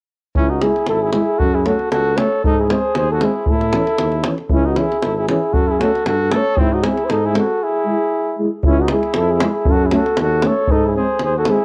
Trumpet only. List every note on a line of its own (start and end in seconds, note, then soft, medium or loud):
0.37 0.51 C#4 medium
0.49 0.65 D#4 medium
0.63 0.89 E4 medium
0.90 1.03 E4 medium
1.03 1.13 E4 medium
1.13 1.40 E4 medium
1.38 1.56 F#4 medium
1.55 1.68 E4 medium
1.67 1.92 F#4 medium
1.93 2.20 F#4 medium
2.18 2.44 A4 medium
2.46 2.62 D#4 medium
2.60 2.72 E4 medium
2.70 2.96 G#4 medium
2.98 3.11 G#4 medium
3.12 3.25 F#4 medium
3.24 3.49 E4 medium
3.49 4.26 E4 medium
4.53 4.67 C#4 medium
4.65 4.77 D#4 medium
4.76 5.00 E4 medium
5.00 5.17 E4 medium
5.17 5.28 E4 medium
5.29 5.55 E4 medium
5.53 5.69 F#4 medium
5.68 5.81 E4 medium
5.80 6.06 F#4 medium
6.07 6.34 F#4 medium
6.32 6.59 A4 medium
6.57 6.74 C4 medium
6.73 6.87 D#4 medium
6.86 7.09 E4 medium
7.07 7.27 D#4 medium
7.07 7.12 G#4 medium
7.26 7.36 E4 medium
7.38 7.65 F#4 medium
7.64 8.40 E4 medium
8.67 8.84 C#4 medium
8.82 8.95 D#4 medium
8.94 9.19 E4 medium
9.19 9.33 E4 medium
9.33 9.43 E4 medium
9.46 9.73 E4 medium
9.71 9.87 F#4 medium
9.86 9.97 E4 soft
9.96 10.20 F#4 medium
10.21 10.48 F#4 medium
10.46 10.72 A4 medium
10.71 10.87 D#4 medium
10.86 10.96 E4 medium
10.97 11.20 G#4 medium
11.23 11.36 G#4 medium
11.37 11.50 F#4 medium
11.49 11.65 E4 medium